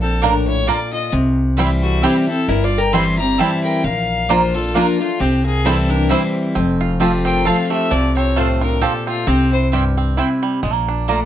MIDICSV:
0, 0, Header, 1, 7, 480
1, 0, Start_track
1, 0, Tempo, 452830
1, 1195, Time_signature, 3, 2, 24, 8
1, 11927, End_track
2, 0, Start_track
2, 0, Title_t, "Fiddle"
2, 0, Program_c, 0, 110
2, 15, Note_on_c, 0, 69, 76
2, 231, Note_on_c, 0, 70, 83
2, 247, Note_off_c, 0, 69, 0
2, 496, Note_off_c, 0, 70, 0
2, 502, Note_on_c, 0, 73, 82
2, 716, Note_on_c, 0, 74, 82
2, 732, Note_off_c, 0, 73, 0
2, 975, Note_off_c, 0, 74, 0
2, 981, Note_on_c, 0, 75, 84
2, 1180, Note_off_c, 0, 75, 0
2, 1937, Note_on_c, 0, 66, 80
2, 2153, Note_on_c, 0, 67, 72
2, 2169, Note_off_c, 0, 66, 0
2, 2415, Note_off_c, 0, 67, 0
2, 2421, Note_on_c, 0, 69, 89
2, 2635, Note_on_c, 0, 70, 81
2, 2651, Note_off_c, 0, 69, 0
2, 2796, Note_on_c, 0, 74, 84
2, 2812, Note_off_c, 0, 70, 0
2, 2944, Note_on_c, 0, 79, 85
2, 2960, Note_off_c, 0, 74, 0
2, 3103, Note_on_c, 0, 84, 97
2, 3119, Note_off_c, 0, 79, 0
2, 3366, Note_off_c, 0, 84, 0
2, 3372, Note_on_c, 0, 82, 89
2, 3591, Note_on_c, 0, 81, 81
2, 3607, Note_off_c, 0, 82, 0
2, 3844, Note_off_c, 0, 81, 0
2, 3850, Note_on_c, 0, 79, 82
2, 4068, Note_on_c, 0, 77, 89
2, 4084, Note_off_c, 0, 79, 0
2, 4556, Note_on_c, 0, 72, 88
2, 4572, Note_off_c, 0, 77, 0
2, 4824, Note_on_c, 0, 69, 85
2, 4840, Note_off_c, 0, 72, 0
2, 5038, Note_on_c, 0, 70, 93
2, 5054, Note_off_c, 0, 69, 0
2, 5293, Note_off_c, 0, 70, 0
2, 5300, Note_on_c, 0, 65, 79
2, 5514, Note_on_c, 0, 67, 72
2, 5529, Note_off_c, 0, 65, 0
2, 5777, Note_off_c, 0, 67, 0
2, 5783, Note_on_c, 0, 68, 90
2, 5993, Note_on_c, 0, 69, 80
2, 6009, Note_off_c, 0, 68, 0
2, 6257, Note_on_c, 0, 70, 85
2, 6273, Note_off_c, 0, 69, 0
2, 6463, Note_off_c, 0, 70, 0
2, 6469, Note_on_c, 0, 72, 83
2, 6630, Note_off_c, 0, 72, 0
2, 7693, Note_on_c, 0, 79, 100
2, 7909, Note_on_c, 0, 77, 89
2, 7925, Note_off_c, 0, 79, 0
2, 8172, Note_off_c, 0, 77, 0
2, 8178, Note_on_c, 0, 76, 89
2, 8389, Note_on_c, 0, 74, 95
2, 8404, Note_off_c, 0, 76, 0
2, 8648, Note_off_c, 0, 74, 0
2, 8654, Note_on_c, 0, 73, 84
2, 8879, Note_on_c, 0, 72, 89
2, 8895, Note_off_c, 0, 73, 0
2, 9136, Note_off_c, 0, 72, 0
2, 9142, Note_on_c, 0, 70, 86
2, 9354, Note_on_c, 0, 69, 74
2, 9370, Note_off_c, 0, 70, 0
2, 9611, Note_off_c, 0, 69, 0
2, 9617, Note_on_c, 0, 65, 79
2, 9832, Note_on_c, 0, 67, 78
2, 9847, Note_off_c, 0, 65, 0
2, 10086, Note_off_c, 0, 67, 0
2, 10092, Note_on_c, 0, 72, 93
2, 10223, Note_off_c, 0, 72, 0
2, 11927, End_track
3, 0, Start_track
3, 0, Title_t, "Mandolin"
3, 0, Program_c, 1, 25
3, 228, Note_on_c, 1, 58, 93
3, 236, Note_on_c, 1, 65, 105
3, 239, Note_on_c, 1, 74, 99
3, 242, Note_on_c, 1, 82, 98
3, 338, Note_off_c, 1, 58, 0
3, 342, Note_off_c, 1, 65, 0
3, 344, Note_off_c, 1, 74, 0
3, 345, Note_off_c, 1, 82, 0
3, 706, Note_on_c, 1, 58, 97
3, 712, Note_on_c, 1, 65, 90
3, 715, Note_on_c, 1, 74, 93
3, 721, Note_on_c, 1, 82, 101
3, 817, Note_off_c, 1, 58, 0
3, 820, Note_off_c, 1, 65, 0
3, 821, Note_off_c, 1, 74, 0
3, 825, Note_off_c, 1, 82, 0
3, 1662, Note_on_c, 1, 60, 94
3, 1669, Note_on_c, 1, 64, 90
3, 1671, Note_on_c, 1, 72, 108
3, 1677, Note_on_c, 1, 79, 101
3, 1774, Note_off_c, 1, 60, 0
3, 1778, Note_off_c, 1, 64, 0
3, 1779, Note_off_c, 1, 72, 0
3, 1782, Note_off_c, 1, 79, 0
3, 2140, Note_on_c, 1, 60, 87
3, 2147, Note_on_c, 1, 64, 87
3, 2152, Note_on_c, 1, 72, 93
3, 2154, Note_on_c, 1, 79, 103
3, 2253, Note_off_c, 1, 60, 0
3, 2257, Note_off_c, 1, 64, 0
3, 2259, Note_off_c, 1, 72, 0
3, 2261, Note_off_c, 1, 79, 0
3, 3103, Note_on_c, 1, 60, 98
3, 3107, Note_on_c, 1, 64, 97
3, 3114, Note_on_c, 1, 72, 95
3, 3116, Note_on_c, 1, 79, 103
3, 3215, Note_off_c, 1, 60, 0
3, 3217, Note_off_c, 1, 64, 0
3, 3220, Note_off_c, 1, 72, 0
3, 3221, Note_off_c, 1, 79, 0
3, 3582, Note_on_c, 1, 60, 98
3, 3590, Note_on_c, 1, 64, 94
3, 3591, Note_on_c, 1, 72, 101
3, 3596, Note_on_c, 1, 79, 102
3, 3694, Note_off_c, 1, 60, 0
3, 3698, Note_off_c, 1, 64, 0
3, 3698, Note_off_c, 1, 72, 0
3, 3701, Note_off_c, 1, 79, 0
3, 4546, Note_on_c, 1, 58, 95
3, 4549, Note_on_c, 1, 65, 101
3, 4552, Note_on_c, 1, 74, 110
3, 4558, Note_on_c, 1, 82, 106
3, 4656, Note_off_c, 1, 58, 0
3, 4658, Note_off_c, 1, 65, 0
3, 4659, Note_off_c, 1, 74, 0
3, 4662, Note_off_c, 1, 82, 0
3, 5025, Note_on_c, 1, 58, 93
3, 5028, Note_on_c, 1, 65, 95
3, 5032, Note_on_c, 1, 74, 98
3, 5037, Note_on_c, 1, 82, 110
3, 5135, Note_off_c, 1, 58, 0
3, 5137, Note_off_c, 1, 65, 0
3, 5139, Note_off_c, 1, 74, 0
3, 5141, Note_off_c, 1, 82, 0
3, 5987, Note_on_c, 1, 60, 84
3, 5991, Note_on_c, 1, 64, 105
3, 5997, Note_on_c, 1, 72, 99
3, 6000, Note_on_c, 1, 79, 104
3, 6096, Note_off_c, 1, 60, 0
3, 6098, Note_off_c, 1, 64, 0
3, 6101, Note_off_c, 1, 72, 0
3, 6103, Note_off_c, 1, 79, 0
3, 6456, Note_on_c, 1, 60, 91
3, 6460, Note_on_c, 1, 64, 94
3, 6466, Note_on_c, 1, 72, 109
3, 6472, Note_on_c, 1, 79, 104
3, 6571, Note_off_c, 1, 60, 0
3, 6573, Note_off_c, 1, 64, 0
3, 6576, Note_off_c, 1, 72, 0
3, 6579, Note_off_c, 1, 79, 0
3, 7419, Note_on_c, 1, 60, 98
3, 7424, Note_on_c, 1, 65, 95
3, 7431, Note_on_c, 1, 72, 98
3, 7432, Note_on_c, 1, 81, 99
3, 7532, Note_off_c, 1, 60, 0
3, 7535, Note_off_c, 1, 65, 0
3, 7538, Note_off_c, 1, 72, 0
3, 7539, Note_off_c, 1, 81, 0
3, 7897, Note_on_c, 1, 60, 96
3, 7903, Note_on_c, 1, 65, 101
3, 7906, Note_on_c, 1, 72, 94
3, 7913, Note_on_c, 1, 81, 111
3, 8011, Note_off_c, 1, 60, 0
3, 8014, Note_off_c, 1, 65, 0
3, 8016, Note_off_c, 1, 72, 0
3, 8019, Note_off_c, 1, 81, 0
3, 8864, Note_on_c, 1, 60, 101
3, 8869, Note_on_c, 1, 65, 102
3, 8873, Note_on_c, 1, 72, 117
3, 8877, Note_on_c, 1, 81, 109
3, 8975, Note_off_c, 1, 60, 0
3, 8977, Note_off_c, 1, 65, 0
3, 8979, Note_off_c, 1, 72, 0
3, 8981, Note_off_c, 1, 81, 0
3, 9342, Note_on_c, 1, 60, 108
3, 9348, Note_on_c, 1, 65, 101
3, 9352, Note_on_c, 1, 72, 90
3, 9357, Note_on_c, 1, 81, 96
3, 9454, Note_off_c, 1, 60, 0
3, 9457, Note_off_c, 1, 65, 0
3, 9459, Note_off_c, 1, 72, 0
3, 9461, Note_off_c, 1, 81, 0
3, 10304, Note_on_c, 1, 60, 111
3, 10310, Note_on_c, 1, 64, 104
3, 10315, Note_on_c, 1, 72, 104
3, 10318, Note_on_c, 1, 79, 115
3, 10415, Note_off_c, 1, 60, 0
3, 10418, Note_off_c, 1, 64, 0
3, 10420, Note_off_c, 1, 72, 0
3, 10422, Note_off_c, 1, 79, 0
3, 10785, Note_on_c, 1, 60, 97
3, 10791, Note_on_c, 1, 64, 101
3, 10795, Note_on_c, 1, 72, 107
3, 10798, Note_on_c, 1, 79, 103
3, 10896, Note_off_c, 1, 60, 0
3, 10899, Note_off_c, 1, 64, 0
3, 10900, Note_off_c, 1, 72, 0
3, 10902, Note_off_c, 1, 79, 0
3, 11743, Note_on_c, 1, 58, 105
3, 11749, Note_on_c, 1, 65, 93
3, 11754, Note_on_c, 1, 74, 95
3, 11757, Note_on_c, 1, 82, 106
3, 11855, Note_off_c, 1, 58, 0
3, 11857, Note_off_c, 1, 65, 0
3, 11860, Note_off_c, 1, 74, 0
3, 11862, Note_off_c, 1, 82, 0
3, 11927, End_track
4, 0, Start_track
4, 0, Title_t, "Resonator guitar played with a steel bar"
4, 0, Program_c, 2, 25
4, 33, Note_on_c, 2, 60, 63
4, 248, Note_off_c, 2, 60, 0
4, 248, Note_on_c, 2, 62, 69
4, 506, Note_on_c, 2, 64, 69
4, 508, Note_off_c, 2, 62, 0
4, 725, Note_off_c, 2, 64, 0
4, 725, Note_on_c, 2, 65, 69
4, 967, Note_off_c, 2, 65, 0
4, 980, Note_on_c, 2, 65, 76
4, 1179, Note_off_c, 2, 65, 0
4, 1937, Note_on_c, 2, 57, 63
4, 2148, Note_off_c, 2, 57, 0
4, 2148, Note_on_c, 2, 60, 60
4, 2398, Note_off_c, 2, 60, 0
4, 2411, Note_on_c, 2, 60, 70
4, 2634, Note_off_c, 2, 60, 0
4, 2634, Note_on_c, 2, 64, 65
4, 2797, Note_off_c, 2, 64, 0
4, 2797, Note_on_c, 2, 65, 71
4, 2945, Note_off_c, 2, 65, 0
4, 2945, Note_on_c, 2, 70, 76
4, 3109, Note_off_c, 2, 70, 0
4, 3114, Note_on_c, 2, 76, 89
4, 3380, Note_off_c, 2, 76, 0
4, 3386, Note_on_c, 2, 74, 70
4, 3598, Note_off_c, 2, 74, 0
4, 3598, Note_on_c, 2, 72, 64
4, 3862, Note_off_c, 2, 72, 0
4, 3867, Note_on_c, 2, 70, 70
4, 4062, Note_off_c, 2, 70, 0
4, 4080, Note_on_c, 2, 70, 72
4, 4556, Note_off_c, 2, 70, 0
4, 4556, Note_on_c, 2, 65, 66
4, 4820, Note_off_c, 2, 65, 0
4, 4820, Note_on_c, 2, 60, 65
4, 5039, Note_off_c, 2, 60, 0
4, 5039, Note_on_c, 2, 62, 76
4, 5302, Note_off_c, 2, 62, 0
4, 5309, Note_on_c, 2, 57, 72
4, 5518, Note_off_c, 2, 57, 0
4, 5518, Note_on_c, 2, 60, 60
4, 5769, Note_off_c, 2, 60, 0
4, 5774, Note_on_c, 2, 58, 76
4, 5988, Note_off_c, 2, 58, 0
4, 5988, Note_on_c, 2, 60, 63
4, 6250, Note_off_c, 2, 60, 0
4, 6250, Note_on_c, 2, 62, 65
4, 6457, Note_off_c, 2, 62, 0
4, 6461, Note_on_c, 2, 64, 72
4, 6714, Note_off_c, 2, 64, 0
4, 7695, Note_on_c, 2, 70, 78
4, 7912, Note_off_c, 2, 70, 0
4, 7912, Note_on_c, 2, 69, 75
4, 8165, Note_off_c, 2, 69, 0
4, 8169, Note_on_c, 2, 67, 76
4, 8391, Note_off_c, 2, 67, 0
4, 8391, Note_on_c, 2, 65, 77
4, 8657, Note_off_c, 2, 65, 0
4, 8661, Note_on_c, 2, 64, 71
4, 8867, Note_off_c, 2, 64, 0
4, 8867, Note_on_c, 2, 65, 72
4, 9134, Note_off_c, 2, 65, 0
4, 9139, Note_on_c, 2, 62, 68
4, 9338, Note_off_c, 2, 62, 0
4, 9342, Note_on_c, 2, 60, 60
4, 9614, Note_off_c, 2, 60, 0
4, 9623, Note_on_c, 2, 57, 59
4, 9833, Note_off_c, 2, 57, 0
4, 9833, Note_on_c, 2, 60, 63
4, 10093, Note_on_c, 2, 64, 77
4, 10099, Note_off_c, 2, 60, 0
4, 10295, Note_off_c, 2, 64, 0
4, 11927, End_track
5, 0, Start_track
5, 0, Title_t, "Five-string banjo"
5, 0, Program_c, 3, 105
5, 249, Note_on_c, 3, 58, 67
5, 253, Note_on_c, 3, 62, 62
5, 274, Note_off_c, 3, 62, 0
5, 360, Note_off_c, 3, 58, 0
5, 724, Note_on_c, 3, 58, 65
5, 727, Note_on_c, 3, 62, 61
5, 748, Note_off_c, 3, 62, 0
5, 837, Note_off_c, 3, 58, 0
5, 1685, Note_on_c, 3, 55, 67
5, 1689, Note_on_c, 3, 60, 64
5, 1692, Note_on_c, 3, 64, 62
5, 1797, Note_off_c, 3, 55, 0
5, 1799, Note_off_c, 3, 60, 0
5, 1800, Note_off_c, 3, 64, 0
5, 2160, Note_on_c, 3, 55, 63
5, 2166, Note_on_c, 3, 60, 66
5, 2170, Note_on_c, 3, 64, 67
5, 2274, Note_off_c, 3, 55, 0
5, 2277, Note_off_c, 3, 60, 0
5, 2279, Note_off_c, 3, 64, 0
5, 3117, Note_on_c, 3, 55, 67
5, 3122, Note_on_c, 3, 60, 66
5, 3124, Note_on_c, 3, 64, 65
5, 3233, Note_off_c, 3, 55, 0
5, 3234, Note_off_c, 3, 60, 0
5, 3236, Note_off_c, 3, 64, 0
5, 3603, Note_on_c, 3, 55, 66
5, 3609, Note_on_c, 3, 60, 62
5, 3610, Note_on_c, 3, 64, 63
5, 3716, Note_off_c, 3, 55, 0
5, 3718, Note_off_c, 3, 60, 0
5, 3719, Note_off_c, 3, 64, 0
5, 4560, Note_on_c, 3, 58, 68
5, 4565, Note_on_c, 3, 62, 66
5, 4586, Note_off_c, 3, 62, 0
5, 4674, Note_off_c, 3, 58, 0
5, 5044, Note_on_c, 3, 58, 68
5, 5051, Note_on_c, 3, 62, 67
5, 5073, Note_off_c, 3, 62, 0
5, 5156, Note_off_c, 3, 58, 0
5, 5997, Note_on_c, 3, 55, 66
5, 6005, Note_on_c, 3, 60, 62
5, 6006, Note_on_c, 3, 64, 72
5, 6113, Note_off_c, 3, 55, 0
5, 6115, Note_off_c, 3, 60, 0
5, 6117, Note_off_c, 3, 64, 0
5, 6471, Note_on_c, 3, 55, 64
5, 6480, Note_on_c, 3, 60, 65
5, 6483, Note_on_c, 3, 64, 67
5, 6590, Note_off_c, 3, 55, 0
5, 6592, Note_off_c, 3, 60, 0
5, 6595, Note_off_c, 3, 64, 0
5, 6945, Note_on_c, 3, 60, 74
5, 7215, Note_on_c, 3, 65, 68
5, 7424, Note_on_c, 3, 67, 60
5, 7680, Note_off_c, 3, 60, 0
5, 7684, Note_on_c, 3, 60, 59
5, 7868, Note_off_c, 3, 65, 0
5, 7899, Note_on_c, 3, 65, 62
5, 8122, Note_off_c, 3, 67, 0
5, 8164, Note_on_c, 3, 57, 58
5, 8383, Note_on_c, 3, 53, 73
5, 8599, Note_off_c, 3, 65, 0
5, 8653, Note_off_c, 3, 60, 0
5, 8658, Note_on_c, 3, 60, 63
5, 8823, Note_off_c, 3, 57, 0
5, 8865, Note_on_c, 3, 57, 63
5, 9081, Note_off_c, 3, 53, 0
5, 9129, Note_on_c, 3, 65, 58
5, 9310, Note_off_c, 3, 60, 0
5, 9345, Note_on_c, 3, 67, 62
5, 9562, Note_off_c, 3, 57, 0
5, 9616, Note_on_c, 3, 60, 60
5, 9785, Note_off_c, 3, 65, 0
5, 9815, Note_off_c, 3, 60, 0
5, 9828, Note_on_c, 3, 60, 68
5, 9829, Note_off_c, 3, 67, 0
5, 10316, Note_on_c, 3, 67, 61
5, 10524, Note_off_c, 3, 60, 0
5, 10574, Note_on_c, 3, 60, 57
5, 10783, Note_on_c, 3, 64, 64
5, 11008, Note_off_c, 3, 67, 0
5, 11052, Note_on_c, 3, 55, 62
5, 11228, Note_off_c, 3, 60, 0
5, 11262, Note_off_c, 3, 55, 0
5, 11267, Note_on_c, 3, 56, 78
5, 11269, Note_off_c, 3, 64, 0
5, 11373, Note_off_c, 3, 56, 0
5, 11373, Note_on_c, 3, 58, 83
5, 11538, Note_on_c, 3, 62, 60
5, 11739, Note_off_c, 3, 58, 0
5, 11752, Note_on_c, 3, 58, 58
5, 11927, Note_off_c, 3, 58, 0
5, 11927, Note_off_c, 3, 62, 0
5, 11927, End_track
6, 0, Start_track
6, 0, Title_t, "Steel-string acoustic guitar"
6, 0, Program_c, 4, 25
6, 0, Note_on_c, 4, 46, 89
6, 241, Note_on_c, 4, 45, 96
6, 673, Note_off_c, 4, 46, 0
6, 697, Note_off_c, 4, 45, 0
6, 725, Note_on_c, 4, 46, 85
6, 1179, Note_off_c, 4, 46, 0
6, 1189, Note_on_c, 4, 48, 94
6, 1661, Note_on_c, 4, 52, 81
6, 1673, Note_on_c, 4, 55, 93
6, 1678, Note_on_c, 4, 60, 89
6, 1685, Note_on_c, 4, 64, 98
6, 2109, Note_off_c, 4, 48, 0
6, 2126, Note_off_c, 4, 52, 0
6, 2132, Note_off_c, 4, 55, 0
6, 2135, Note_off_c, 4, 60, 0
6, 2138, Note_off_c, 4, 64, 0
6, 2150, Note_on_c, 4, 52, 89
6, 2152, Note_on_c, 4, 55, 88
6, 2166, Note_on_c, 4, 60, 93
6, 2169, Note_on_c, 4, 64, 92
6, 2396, Note_off_c, 4, 64, 0
6, 2408, Note_off_c, 4, 52, 0
6, 2409, Note_off_c, 4, 55, 0
6, 2409, Note_on_c, 4, 64, 61
6, 2416, Note_off_c, 4, 60, 0
6, 2436, Note_on_c, 4, 60, 53
6, 2620, Note_off_c, 4, 64, 0
6, 2633, Note_off_c, 4, 60, 0
6, 2634, Note_on_c, 4, 43, 87
6, 3106, Note_on_c, 4, 52, 84
6, 3114, Note_on_c, 4, 55, 97
6, 3124, Note_on_c, 4, 60, 84
6, 3133, Note_on_c, 4, 64, 94
6, 3362, Note_off_c, 4, 64, 0
6, 3366, Note_off_c, 4, 52, 0
6, 3370, Note_off_c, 4, 55, 0
6, 3375, Note_off_c, 4, 60, 0
6, 3375, Note_on_c, 4, 64, 59
6, 3404, Note_on_c, 4, 60, 49
6, 3551, Note_off_c, 4, 43, 0
6, 3583, Note_off_c, 4, 64, 0
6, 3596, Note_on_c, 4, 52, 83
6, 3597, Note_off_c, 4, 60, 0
6, 3605, Note_on_c, 4, 55, 83
6, 3612, Note_on_c, 4, 60, 89
6, 3618, Note_on_c, 4, 64, 94
6, 4053, Note_off_c, 4, 52, 0
6, 4058, Note_off_c, 4, 55, 0
6, 4061, Note_off_c, 4, 60, 0
6, 4064, Note_off_c, 4, 64, 0
6, 4076, Note_on_c, 4, 46, 82
6, 4547, Note_on_c, 4, 53, 90
6, 4553, Note_on_c, 4, 58, 91
6, 4559, Note_on_c, 4, 62, 106
6, 4568, Note_on_c, 4, 65, 100
6, 4803, Note_off_c, 4, 65, 0
6, 4806, Note_off_c, 4, 53, 0
6, 4809, Note_off_c, 4, 58, 0
6, 4812, Note_off_c, 4, 62, 0
6, 4816, Note_on_c, 4, 65, 61
6, 4838, Note_on_c, 4, 62, 44
6, 4992, Note_off_c, 4, 46, 0
6, 5023, Note_off_c, 4, 65, 0
6, 5028, Note_on_c, 4, 53, 85
6, 5030, Note_off_c, 4, 62, 0
6, 5038, Note_on_c, 4, 58, 88
6, 5043, Note_on_c, 4, 62, 85
6, 5052, Note_on_c, 4, 65, 99
6, 5286, Note_off_c, 4, 53, 0
6, 5289, Note_off_c, 4, 65, 0
6, 5291, Note_off_c, 4, 58, 0
6, 5294, Note_off_c, 4, 62, 0
6, 5302, Note_on_c, 4, 65, 61
6, 5319, Note_on_c, 4, 62, 49
6, 5506, Note_off_c, 4, 65, 0
6, 5508, Note_on_c, 4, 48, 82
6, 5515, Note_off_c, 4, 62, 0
6, 5984, Note_on_c, 4, 52, 91
6, 5996, Note_on_c, 4, 55, 87
6, 6002, Note_on_c, 4, 60, 102
6, 6008, Note_on_c, 4, 64, 107
6, 6428, Note_off_c, 4, 48, 0
6, 6442, Note_off_c, 4, 52, 0
6, 6453, Note_off_c, 4, 55, 0
6, 6455, Note_on_c, 4, 52, 90
6, 6456, Note_off_c, 4, 60, 0
6, 6459, Note_off_c, 4, 64, 0
6, 6465, Note_on_c, 4, 55, 83
6, 6473, Note_on_c, 4, 60, 86
6, 6480, Note_on_c, 4, 64, 95
6, 6923, Note_off_c, 4, 52, 0
6, 6928, Note_off_c, 4, 55, 0
6, 6932, Note_off_c, 4, 60, 0
6, 6935, Note_off_c, 4, 64, 0
6, 6950, Note_on_c, 4, 41, 95
6, 7416, Note_on_c, 4, 53, 85
6, 7425, Note_on_c, 4, 57, 95
6, 7430, Note_on_c, 4, 60, 87
6, 7440, Note_on_c, 4, 65, 101
6, 7869, Note_off_c, 4, 41, 0
6, 7883, Note_off_c, 4, 53, 0
6, 7888, Note_off_c, 4, 57, 0
6, 7891, Note_off_c, 4, 60, 0
6, 7895, Note_off_c, 4, 65, 0
6, 7896, Note_on_c, 4, 53, 86
6, 7908, Note_on_c, 4, 57, 83
6, 7913, Note_on_c, 4, 60, 91
6, 7921, Note_on_c, 4, 65, 99
6, 8363, Note_off_c, 4, 53, 0
6, 8369, Note_off_c, 4, 57, 0
6, 8372, Note_off_c, 4, 60, 0
6, 8376, Note_off_c, 4, 65, 0
6, 8386, Note_on_c, 4, 48, 92
6, 8875, Note_on_c, 4, 45, 98
6, 9307, Note_off_c, 4, 48, 0
6, 9333, Note_off_c, 4, 45, 0
6, 9347, Note_on_c, 4, 46, 91
6, 9809, Note_off_c, 4, 46, 0
6, 9825, Note_on_c, 4, 48, 88
6, 10318, Note_on_c, 4, 43, 87
6, 10747, Note_off_c, 4, 48, 0
6, 10774, Note_off_c, 4, 43, 0
6, 10792, Note_on_c, 4, 48, 90
6, 11251, Note_off_c, 4, 48, 0
6, 11284, Note_on_c, 4, 46, 88
6, 11760, Note_on_c, 4, 57, 93
6, 11927, Note_off_c, 4, 46, 0
6, 11927, Note_off_c, 4, 57, 0
6, 11927, End_track
7, 0, Start_track
7, 0, Title_t, "Upright bass"
7, 0, Program_c, 5, 32
7, 0, Note_on_c, 5, 34, 96
7, 722, Note_off_c, 5, 34, 0
7, 1194, Note_on_c, 5, 36, 94
7, 2160, Note_off_c, 5, 36, 0
7, 2631, Note_on_c, 5, 31, 83
7, 3598, Note_off_c, 5, 31, 0
7, 4073, Note_on_c, 5, 34, 92
7, 5040, Note_off_c, 5, 34, 0
7, 5515, Note_on_c, 5, 36, 93
7, 6481, Note_off_c, 5, 36, 0
7, 6953, Note_on_c, 5, 29, 95
7, 7920, Note_off_c, 5, 29, 0
7, 8390, Note_on_c, 5, 36, 88
7, 9358, Note_off_c, 5, 36, 0
7, 9827, Note_on_c, 5, 36, 94
7, 10797, Note_off_c, 5, 36, 0
7, 11268, Note_on_c, 5, 34, 91
7, 11927, Note_off_c, 5, 34, 0
7, 11927, End_track
0, 0, End_of_file